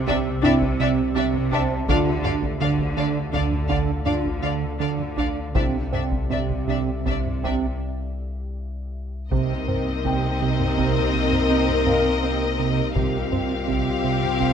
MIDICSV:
0, 0, Header, 1, 13, 480
1, 0, Start_track
1, 0, Tempo, 725514
1, 1246, Time_signature, 5, 2, 24, 8
1, 2685, Tempo, 750939
1, 6045, Tempo, 728155
1, 9483, End_track
2, 0, Start_track
2, 0, Title_t, "Grand piano"
2, 0, Program_c, 0, 0
2, 0, Control_c, 0, 64, 127
2, 1008, Note_on_c, 0, 81, 51
2, 1258, Control_c, 0, 64, 0
2, 1364, Control_c, 0, 64, 127
2, 2420, Note_off_c, 0, 81, 0
2, 3652, Control_c, 0, 64, 0
2, 3775, Control_c, 0, 64, 127
2, 6056, Control_c, 0, 64, 0
2, 6171, Control_c, 0, 64, 127
2, 6538, Note_on_c, 0, 79, 47
2, 7723, Note_on_c, 0, 77, 38
2, 7945, Note_off_c, 0, 79, 0
2, 8462, Control_c, 0, 64, 0
2, 8568, Control_c, 0, 64, 127
2, 9136, Note_off_c, 0, 77, 0
2, 9483, End_track
3, 0, Start_track
3, 0, Title_t, "Violin section"
3, 0, Program_c, 1, 48
3, 52, Note_on_c, 1, 76, 59
3, 105, Note_off_c, 1, 76, 0
3, 289, Note_on_c, 1, 76, 55
3, 342, Note_off_c, 1, 76, 0
3, 530, Note_on_c, 1, 76, 55
3, 583, Note_off_c, 1, 76, 0
3, 769, Note_on_c, 1, 76, 47
3, 822, Note_off_c, 1, 76, 0
3, 1013, Note_on_c, 1, 76, 49
3, 1066, Note_off_c, 1, 76, 0
3, 1249, Note_on_c, 1, 77, 55
3, 1302, Note_off_c, 1, 77, 0
3, 1485, Note_on_c, 1, 77, 43
3, 1537, Note_off_c, 1, 77, 0
3, 1728, Note_on_c, 1, 77, 47
3, 1781, Note_off_c, 1, 77, 0
3, 1969, Note_on_c, 1, 77, 41
3, 2021, Note_off_c, 1, 77, 0
3, 2207, Note_on_c, 1, 77, 42
3, 2260, Note_off_c, 1, 77, 0
3, 2439, Note_on_c, 1, 77, 36
3, 2492, Note_off_c, 1, 77, 0
3, 2683, Note_on_c, 1, 77, 40
3, 2734, Note_off_c, 1, 77, 0
3, 2918, Note_on_c, 1, 77, 35
3, 2970, Note_off_c, 1, 77, 0
3, 3162, Note_on_c, 1, 77, 36
3, 3214, Note_off_c, 1, 77, 0
3, 3403, Note_on_c, 1, 77, 30
3, 3454, Note_off_c, 1, 77, 0
3, 3637, Note_on_c, 1, 76, 35
3, 3689, Note_off_c, 1, 76, 0
3, 3884, Note_on_c, 1, 76, 32
3, 3935, Note_off_c, 1, 76, 0
3, 4124, Note_on_c, 1, 76, 30
3, 4175, Note_off_c, 1, 76, 0
3, 4368, Note_on_c, 1, 76, 31
3, 4419, Note_off_c, 1, 76, 0
3, 4608, Note_on_c, 1, 76, 33
3, 4659, Note_off_c, 1, 76, 0
3, 4852, Note_on_c, 1, 76, 28
3, 4903, Note_off_c, 1, 76, 0
3, 6042, Note_on_c, 1, 75, 55
3, 8421, Note_off_c, 1, 75, 0
3, 8446, Note_on_c, 1, 77, 56
3, 9483, Note_off_c, 1, 77, 0
3, 9483, End_track
4, 0, Start_track
4, 0, Title_t, "Ambient pad"
4, 0, Program_c, 2, 92
4, 0, Note_on_c, 2, 67, 60
4, 0, Note_on_c, 2, 74, 61
4, 0, Note_on_c, 2, 76, 58
4, 1221, Note_off_c, 2, 74, 0
4, 1241, Note_on_c, 2, 69, 57
4, 1244, Note_on_c, 2, 77, 65
4, 1245, Note_on_c, 2, 74, 63
4, 1247, Note_off_c, 2, 76, 0
4, 1248, Note_off_c, 2, 67, 0
4, 3613, Note_off_c, 2, 74, 0
4, 3632, Note_on_c, 2, 76, 52
4, 3633, Note_on_c, 2, 67, 54
4, 3635, Note_on_c, 2, 74, 58
4, 3637, Note_off_c, 2, 69, 0
4, 3638, Note_off_c, 2, 77, 0
4, 5063, Note_off_c, 2, 74, 0
4, 5087, Note_off_c, 2, 67, 0
4, 5087, Note_off_c, 2, 76, 0
4, 6054, Note_on_c, 2, 70, 55
4, 6054, Note_on_c, 2, 75, 57
4, 6056, Note_on_c, 2, 67, 55
4, 8426, Note_off_c, 2, 75, 0
4, 8427, Note_off_c, 2, 67, 0
4, 8427, Note_off_c, 2, 70, 0
4, 8449, Note_on_c, 2, 67, 56
4, 8449, Note_on_c, 2, 77, 53
4, 8450, Note_on_c, 2, 72, 52
4, 9483, Note_off_c, 2, 67, 0
4, 9483, Note_off_c, 2, 72, 0
4, 9483, Note_off_c, 2, 77, 0
4, 9483, End_track
5, 0, Start_track
5, 0, Title_t, "Violin section"
5, 0, Program_c, 3, 48
5, 57, Note_on_c, 3, 74, 51
5, 110, Note_off_c, 3, 74, 0
5, 291, Note_on_c, 3, 74, 62
5, 344, Note_off_c, 3, 74, 0
5, 533, Note_on_c, 3, 74, 48
5, 586, Note_off_c, 3, 74, 0
5, 776, Note_on_c, 3, 74, 52
5, 829, Note_off_c, 3, 74, 0
5, 1009, Note_on_c, 3, 74, 50
5, 1062, Note_off_c, 3, 74, 0
5, 1251, Note_on_c, 3, 74, 59
5, 1304, Note_off_c, 3, 74, 0
5, 1489, Note_on_c, 3, 74, 46
5, 1542, Note_off_c, 3, 74, 0
5, 1743, Note_on_c, 3, 74, 42
5, 1796, Note_off_c, 3, 74, 0
5, 1980, Note_on_c, 3, 74, 40
5, 2033, Note_off_c, 3, 74, 0
5, 2220, Note_on_c, 3, 74, 43
5, 2273, Note_off_c, 3, 74, 0
5, 2451, Note_on_c, 3, 74, 35
5, 2504, Note_off_c, 3, 74, 0
5, 2693, Note_on_c, 3, 74, 44
5, 2744, Note_off_c, 3, 74, 0
5, 2934, Note_on_c, 3, 74, 33
5, 2985, Note_off_c, 3, 74, 0
5, 3169, Note_on_c, 3, 74, 31
5, 3220, Note_off_c, 3, 74, 0
5, 3407, Note_on_c, 3, 74, 31
5, 3458, Note_off_c, 3, 74, 0
5, 3650, Note_on_c, 3, 74, 33
5, 3701, Note_off_c, 3, 74, 0
5, 3893, Note_on_c, 3, 74, 26
5, 3944, Note_off_c, 3, 74, 0
5, 4137, Note_on_c, 3, 74, 26
5, 4188, Note_off_c, 3, 74, 0
5, 4381, Note_on_c, 3, 74, 28
5, 4432, Note_off_c, 3, 74, 0
5, 4626, Note_on_c, 3, 74, 33
5, 4677, Note_off_c, 3, 74, 0
5, 4859, Note_on_c, 3, 74, 28
5, 4910, Note_off_c, 3, 74, 0
5, 6039, Note_on_c, 3, 70, 61
5, 8419, Note_off_c, 3, 70, 0
5, 8446, Note_on_c, 3, 67, 61
5, 9483, Note_off_c, 3, 67, 0
5, 9483, End_track
6, 0, Start_track
6, 0, Title_t, "French horn section"
6, 0, Program_c, 4, 60
6, 280, Note_on_c, 4, 62, 66
6, 285, Note_on_c, 4, 64, 64
6, 453, Note_off_c, 4, 62, 0
6, 455, Note_off_c, 4, 64, 0
6, 1251, Note_on_c, 4, 62, 59
6, 1254, Note_on_c, 4, 65, 57
6, 1418, Note_off_c, 4, 62, 0
6, 1421, Note_off_c, 4, 65, 0
6, 2689, Note_on_c, 4, 65, 44
6, 2693, Note_on_c, 4, 62, 48
6, 2855, Note_off_c, 4, 65, 0
6, 2857, Note_off_c, 4, 62, 0
6, 3644, Note_on_c, 4, 64, 33
6, 3647, Note_on_c, 4, 62, 35
6, 3816, Note_off_c, 4, 64, 0
6, 3817, Note_off_c, 4, 62, 0
6, 6041, Note_on_c, 4, 63, 53
6, 6046, Note_on_c, 4, 58, 53
6, 8420, Note_off_c, 4, 63, 0
6, 8422, Note_off_c, 4, 58, 0
6, 8443, Note_on_c, 4, 65, 54
6, 8448, Note_on_c, 4, 55, 55
6, 9483, Note_off_c, 4, 55, 0
6, 9483, Note_off_c, 4, 65, 0
6, 9483, End_track
7, 0, Start_track
7, 0, Title_t, "Viola section"
7, 0, Program_c, 5, 48
7, 46, Note_on_c, 5, 62, 56
7, 99, Note_off_c, 5, 62, 0
7, 279, Note_on_c, 5, 62, 61
7, 331, Note_off_c, 5, 62, 0
7, 527, Note_on_c, 5, 62, 48
7, 580, Note_off_c, 5, 62, 0
7, 758, Note_on_c, 5, 62, 51
7, 811, Note_off_c, 5, 62, 0
7, 998, Note_on_c, 5, 62, 47
7, 1051, Note_off_c, 5, 62, 0
7, 1244, Note_on_c, 5, 62, 57
7, 1297, Note_off_c, 5, 62, 0
7, 1478, Note_on_c, 5, 62, 46
7, 1531, Note_off_c, 5, 62, 0
7, 1723, Note_on_c, 5, 62, 46
7, 1776, Note_off_c, 5, 62, 0
7, 1964, Note_on_c, 5, 62, 46
7, 2016, Note_off_c, 5, 62, 0
7, 2204, Note_on_c, 5, 62, 46
7, 2257, Note_off_c, 5, 62, 0
7, 2447, Note_on_c, 5, 62, 34
7, 2500, Note_off_c, 5, 62, 0
7, 2688, Note_on_c, 5, 62, 36
7, 2740, Note_off_c, 5, 62, 0
7, 2918, Note_on_c, 5, 62, 34
7, 2969, Note_off_c, 5, 62, 0
7, 3154, Note_on_c, 5, 62, 35
7, 3206, Note_off_c, 5, 62, 0
7, 3396, Note_on_c, 5, 62, 31
7, 3447, Note_off_c, 5, 62, 0
7, 3640, Note_on_c, 5, 62, 30
7, 3691, Note_off_c, 5, 62, 0
7, 3882, Note_on_c, 5, 62, 30
7, 3934, Note_off_c, 5, 62, 0
7, 4125, Note_on_c, 5, 62, 28
7, 4176, Note_off_c, 5, 62, 0
7, 4362, Note_on_c, 5, 62, 30
7, 4413, Note_off_c, 5, 62, 0
7, 4604, Note_on_c, 5, 62, 28
7, 4655, Note_off_c, 5, 62, 0
7, 4846, Note_on_c, 5, 62, 30
7, 4897, Note_off_c, 5, 62, 0
7, 6045, Note_on_c, 5, 60, 58
7, 8422, Note_off_c, 5, 60, 0
7, 8448, Note_on_c, 5, 60, 55
7, 9483, Note_off_c, 5, 60, 0
7, 9483, End_track
8, 0, Start_track
8, 0, Title_t, "Analog synth bass"
8, 0, Program_c, 6, 38
8, 48, Note_on_c, 6, 48, 92
8, 191, Note_off_c, 6, 48, 0
8, 290, Note_on_c, 6, 60, 70
8, 432, Note_off_c, 6, 60, 0
8, 528, Note_on_c, 6, 48, 59
8, 671, Note_off_c, 6, 48, 0
8, 766, Note_on_c, 6, 48, 70
8, 910, Note_off_c, 6, 48, 0
8, 1010, Note_on_c, 6, 60, 66
8, 1153, Note_off_c, 6, 60, 0
8, 1249, Note_on_c, 6, 50, 87
8, 1392, Note_off_c, 6, 50, 0
8, 1487, Note_on_c, 6, 62, 59
8, 1631, Note_off_c, 6, 62, 0
8, 1727, Note_on_c, 6, 50, 65
8, 1871, Note_off_c, 6, 50, 0
8, 1965, Note_on_c, 6, 50, 76
8, 2109, Note_off_c, 6, 50, 0
8, 2205, Note_on_c, 6, 50, 62
8, 2349, Note_off_c, 6, 50, 0
8, 2443, Note_on_c, 6, 50, 87
8, 2588, Note_off_c, 6, 50, 0
8, 2684, Note_on_c, 6, 62, 56
8, 2825, Note_off_c, 6, 62, 0
8, 2922, Note_on_c, 6, 50, 54
8, 3064, Note_off_c, 6, 50, 0
8, 3159, Note_on_c, 6, 50, 73
8, 3302, Note_off_c, 6, 50, 0
8, 3399, Note_on_c, 6, 62, 58
8, 3543, Note_off_c, 6, 62, 0
8, 3637, Note_on_c, 6, 48, 83
8, 3783, Note_off_c, 6, 48, 0
8, 3878, Note_on_c, 6, 60, 54
8, 4024, Note_off_c, 6, 60, 0
8, 4119, Note_on_c, 6, 48, 59
8, 4265, Note_off_c, 6, 48, 0
8, 4358, Note_on_c, 6, 48, 78
8, 4505, Note_off_c, 6, 48, 0
8, 4602, Note_on_c, 6, 48, 52
8, 4749, Note_off_c, 6, 48, 0
8, 4845, Note_on_c, 6, 48, 83
8, 4991, Note_off_c, 6, 48, 0
8, 6046, Note_on_c, 6, 48, 86
8, 6191, Note_off_c, 6, 48, 0
8, 6286, Note_on_c, 6, 60, 54
8, 6432, Note_off_c, 6, 60, 0
8, 6528, Note_on_c, 6, 48, 60
8, 6674, Note_off_c, 6, 48, 0
8, 6773, Note_on_c, 6, 48, 63
8, 6917, Note_off_c, 6, 48, 0
8, 7010, Note_on_c, 6, 48, 85
8, 7154, Note_off_c, 6, 48, 0
8, 7252, Note_on_c, 6, 48, 60
8, 7395, Note_off_c, 6, 48, 0
8, 7492, Note_on_c, 6, 60, 62
8, 7634, Note_off_c, 6, 60, 0
8, 7725, Note_on_c, 6, 48, 74
8, 7869, Note_off_c, 6, 48, 0
8, 7966, Note_on_c, 6, 60, 57
8, 8110, Note_off_c, 6, 60, 0
8, 8206, Note_on_c, 6, 48, 59
8, 8351, Note_off_c, 6, 48, 0
8, 8450, Note_on_c, 6, 48, 76
8, 8594, Note_off_c, 6, 48, 0
8, 8687, Note_on_c, 6, 60, 53
8, 8830, Note_off_c, 6, 60, 0
8, 8922, Note_on_c, 6, 48, 54
8, 9066, Note_off_c, 6, 48, 0
8, 9160, Note_on_c, 6, 48, 54
8, 9305, Note_off_c, 6, 48, 0
8, 9399, Note_on_c, 6, 48, 76
8, 9483, Note_off_c, 6, 48, 0
8, 9483, End_track
9, 0, Start_track
9, 0, Title_t, "Cello section"
9, 0, Program_c, 7, 48
9, 0, Note_on_c, 7, 48, 64
9, 230, Note_off_c, 7, 48, 0
9, 288, Note_on_c, 7, 48, 69
9, 710, Note_off_c, 7, 48, 0
9, 769, Note_on_c, 7, 48, 66
9, 1191, Note_off_c, 7, 48, 0
9, 1245, Note_on_c, 7, 50, 67
9, 1669, Note_off_c, 7, 50, 0
9, 1727, Note_on_c, 7, 50, 59
9, 2150, Note_off_c, 7, 50, 0
9, 2209, Note_on_c, 7, 50, 44
9, 2630, Note_off_c, 7, 50, 0
9, 2686, Note_on_c, 7, 50, 47
9, 3102, Note_off_c, 7, 50, 0
9, 3162, Note_on_c, 7, 50, 46
9, 3584, Note_off_c, 7, 50, 0
9, 3646, Note_on_c, 7, 48, 39
9, 4070, Note_off_c, 7, 48, 0
9, 4130, Note_on_c, 7, 48, 36
9, 4552, Note_off_c, 7, 48, 0
9, 4607, Note_on_c, 7, 48, 37
9, 5034, Note_off_c, 7, 48, 0
9, 6051, Note_on_c, 7, 48, 52
9, 8425, Note_off_c, 7, 48, 0
9, 8454, Note_on_c, 7, 48, 44
9, 9483, Note_off_c, 7, 48, 0
9, 9483, End_track
10, 0, Start_track
10, 0, Title_t, "Timpani"
10, 0, Program_c, 8, 47
10, 8449, Note_on_c, 8, 48, 53
10, 9139, Note_off_c, 8, 48, 0
10, 9483, End_track
11, 0, Start_track
11, 0, Title_t, "Double bass section"
11, 0, Program_c, 10, 48
11, 0, Note_on_c, 10, 36, 62
11, 227, Note_off_c, 10, 36, 0
11, 279, Note_on_c, 10, 36, 64
11, 706, Note_off_c, 10, 36, 0
11, 765, Note_on_c, 10, 36, 68
11, 1189, Note_off_c, 10, 36, 0
11, 1247, Note_on_c, 10, 38, 62
11, 1669, Note_off_c, 10, 38, 0
11, 1723, Note_on_c, 10, 38, 60
11, 2148, Note_off_c, 10, 38, 0
11, 2201, Note_on_c, 10, 38, 44
11, 2626, Note_off_c, 10, 38, 0
11, 2684, Note_on_c, 10, 38, 50
11, 3101, Note_off_c, 10, 38, 0
11, 3158, Note_on_c, 10, 38, 42
11, 3582, Note_off_c, 10, 38, 0
11, 3639, Note_on_c, 10, 36, 39
11, 4066, Note_off_c, 10, 36, 0
11, 4125, Note_on_c, 10, 36, 39
11, 4549, Note_off_c, 10, 36, 0
11, 4606, Note_on_c, 10, 36, 37
11, 5033, Note_off_c, 10, 36, 0
11, 6048, Note_on_c, 10, 36, 53
11, 8424, Note_off_c, 10, 36, 0
11, 8451, Note_on_c, 10, 36, 44
11, 9483, Note_off_c, 10, 36, 0
11, 9483, End_track
12, 0, Start_track
12, 0, Title_t, "Sub bass"
12, 0, Program_c, 11, 38
12, 0, Note_on_c, 11, 36, 75
12, 1248, Note_on_c, 11, 38, 69
12, 1257, Note_off_c, 11, 36, 0
12, 3634, Note_on_c, 11, 36, 63
12, 3644, Note_off_c, 11, 38, 0
12, 6034, Note_off_c, 11, 36, 0
12, 6038, Note_on_c, 11, 36, 63
12, 8418, Note_off_c, 11, 36, 0
12, 8450, Note_on_c, 11, 36, 69
12, 9483, Note_off_c, 11, 36, 0
12, 9483, End_track
13, 0, Start_track
13, 0, Title_t, "Taiko and cinematic ensemble drums"
13, 48, Note_on_c, 9, 41, 85
13, 114, Note_off_c, 9, 41, 0
13, 290, Note_on_c, 9, 45, 51
13, 356, Note_off_c, 9, 45, 0
13, 410, Note_on_c, 9, 41, 70
13, 476, Note_off_c, 9, 41, 0
13, 888, Note_on_c, 9, 45, 45
13, 954, Note_off_c, 9, 45, 0
13, 1008, Note_on_c, 9, 41, 67
13, 1074, Note_off_c, 9, 41, 0
13, 1249, Note_on_c, 9, 41, 102
13, 1315, Note_off_c, 9, 41, 0
13, 1488, Note_on_c, 9, 45, 48
13, 1554, Note_off_c, 9, 45, 0
13, 1605, Note_on_c, 9, 41, 75
13, 1671, Note_off_c, 9, 41, 0
13, 1727, Note_on_c, 9, 45, 48
13, 1793, Note_off_c, 9, 45, 0
13, 1844, Note_on_c, 9, 41, 69
13, 1910, Note_off_c, 9, 41, 0
13, 2209, Note_on_c, 9, 41, 65
13, 2275, Note_off_c, 9, 41, 0
13, 2327, Note_on_c, 9, 45, 48
13, 2393, Note_off_c, 9, 45, 0
13, 2444, Note_on_c, 9, 41, 79
13, 2510, Note_off_c, 9, 41, 0
13, 2685, Note_on_c, 9, 45, 49
13, 2749, Note_off_c, 9, 45, 0
13, 2803, Note_on_c, 9, 41, 63
13, 2867, Note_off_c, 9, 41, 0
13, 3281, Note_on_c, 9, 45, 44
13, 3345, Note_off_c, 9, 45, 0
13, 3400, Note_on_c, 9, 41, 65
13, 3464, Note_off_c, 9, 41, 0
13, 3640, Note_on_c, 9, 41, 84
13, 3704, Note_off_c, 9, 41, 0
13, 3883, Note_on_c, 9, 45, 49
13, 3947, Note_off_c, 9, 45, 0
13, 4001, Note_on_c, 9, 41, 67
13, 4065, Note_off_c, 9, 41, 0
13, 4120, Note_on_c, 9, 45, 43
13, 4184, Note_off_c, 9, 45, 0
13, 4244, Note_on_c, 9, 41, 66
13, 4307, Note_off_c, 9, 41, 0
13, 4607, Note_on_c, 9, 41, 68
13, 4670, Note_off_c, 9, 41, 0
13, 4729, Note_on_c, 9, 45, 41
13, 4793, Note_off_c, 9, 45, 0
13, 4849, Note_on_c, 9, 41, 75
13, 4913, Note_off_c, 9, 41, 0
13, 6045, Note_on_c, 9, 41, 86
13, 6111, Note_off_c, 9, 41, 0
13, 6290, Note_on_c, 9, 45, 50
13, 6356, Note_off_c, 9, 45, 0
13, 6531, Note_on_c, 9, 41, 66
13, 6597, Note_off_c, 9, 41, 0
13, 6892, Note_on_c, 9, 45, 47
13, 6958, Note_off_c, 9, 45, 0
13, 7012, Note_on_c, 9, 41, 61
13, 7078, Note_off_c, 9, 41, 0
13, 7371, Note_on_c, 9, 45, 44
13, 7437, Note_off_c, 9, 45, 0
13, 7610, Note_on_c, 9, 45, 43
13, 7676, Note_off_c, 9, 45, 0
13, 7726, Note_on_c, 9, 45, 52
13, 7792, Note_off_c, 9, 45, 0
13, 8446, Note_on_c, 9, 41, 90
13, 8512, Note_off_c, 9, 41, 0
13, 8688, Note_on_c, 9, 45, 48
13, 8754, Note_off_c, 9, 45, 0
13, 8929, Note_on_c, 9, 41, 69
13, 8995, Note_off_c, 9, 41, 0
13, 9286, Note_on_c, 9, 45, 40
13, 9351, Note_off_c, 9, 45, 0
13, 9406, Note_on_c, 9, 41, 63
13, 9472, Note_off_c, 9, 41, 0
13, 9483, End_track
0, 0, End_of_file